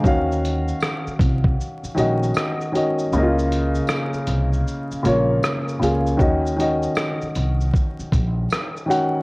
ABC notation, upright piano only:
X:1
M:4/4
L:1/16
Q:"Swing 16ths" 1/4=78
K:Ebdor
V:1 name="Upright piano"
[E,DGf]6 z4 [E,DGe]3 z [E,DGe]2 | [D,B,_F=Fe]6 z4 [D,B,Fd]3 z [D,B,FA]2 | [E,DGe]2 [E,DGe]6 z6 [E,DGg]2 |]